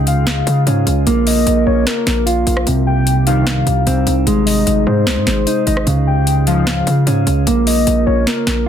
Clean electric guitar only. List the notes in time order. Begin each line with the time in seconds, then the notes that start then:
Already playing: C#3
0.67 C#4
1.07 A#3
2.26 F4
2.67 C3
3.87 C4
4.27 G#3
5.47 D#4
5.87 C#3
7.07 C#4
7.47 A#3